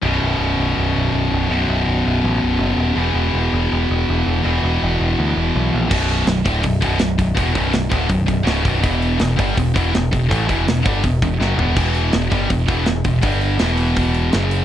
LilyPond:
<<
  \new Staff \with { instrumentName = "Distorted electric guitar" } { \clef bass \time 4/4 \key b \minor \tempo 4 = 164 <b,, fis, b,>1 | <b,, fis, b,>1 | <e, b, e>1 | <e, b, e>1 |
<b,, fis, b,>4 <b,, fis,>8 <d, a, d>8 <b,, fis,>8 <b,, fis, b,>8 <b,, fis,>8 <b,, fis,>8 | <e, b, e>8 <b,, fis, b,>8 <b,, fis,>8 <d, a, d>8 <b,, fis,>8 <b,, fis,>8 <cis, gis, cis>8 <b,, fis, b,>8 | <e, b, e>4 <e, b,>8 <g, d g>8 <e, b,>8 <e, b, e>8 <e, b,>8 <e, b,>8 | <a, e a>8 <e, b, e>8 <e, b,>8 <g, d g>8 <e, b,>8 <e, b,>8 <fis, cis fis>8 <e, b, e>8 |
<e, b, e>4 <e, b,>8 <g, d g>8 <e, b,>8 <e, b, e>8 <e, b,>8 <e, b,>8 | <g, d g>4 <e, b, e>2 <fis, cis fis>4 | }
  \new Staff \with { instrumentName = "Picked electric bass" } { \clef bass \time 4/4 \key b \minor b,,,8 b,,,8 b,,,8 b,,,8 b,,,8 b,,,8 b,,,8 b,,,8 | b,,,8 b,,,8 b,,,8 b,,,8 a,,8 b,,,8 fis,,8 dis,,8 | e,,8 e,,8 e,,8 e,,8 e,,8 e,,8 e,,8 e,,8 | e,,8 e,,8 e,,8 e,,8 d,8 e,,8 b,,8 ais,,8 |
b,,,4 b,,,8 d,,8 b,,,8 b,,,8 b,,,8 b,,,8 | e,,8 b,,,8 b,,,8 d,,8 b,,,8 b,,,8 cis,,8 b,,,8 | e,,4 e,,8 g,,8 e,,8 e,,8 e,,8 e,,8 | a,,8 e,,8 e,,8 g,,8 e,,8 e,,8 fis,,8 e,,8 |
e,,4 e,,8 g,,8 e,,8 e,,8 e,,8 e,,8 | g,,4 e,,2 fis,,4 | }
  \new DrumStaff \with { instrumentName = "Drums" } \drummode { \time 4/4 r4 r4 r4 r4 | r4 r4 r4 r4 | r4 r4 r4 r4 | r4 r4 r4 r4 |
<cymc bd>8 hho8 <hho sn>8 <hho bd>8 <hho bd>8 <hho bd>8 <hho sn>8 <hho bd>8 | <hho bd>8 <hho bd>8 <hho sn>8 <hho bd>8 <hho bd>8 <hho bd>8 <hho sn>8 <hho bd>8 | <hho bd>8 hho8 <hho sn>8 <hho bd>8 <hho bd>8 <hho bd>8 <hho sn>8 <hho bd>8 | <hho bd>8 <hho bd>8 <hho sn>8 <hho bd>8 <hho bd>8 <hho bd>8 sn8 tomfh8 |
<cymc hho bd>8 hho8 <hho sn>8 <hho bd>8 <hho bd>8 <hho bd>8 <hho sn>8 <hho bd>8 | <hho bd>8 hho8 <hho sn>8 hho8 <hho bd>8 hho8 <hho sn>8 hho8 | }
>>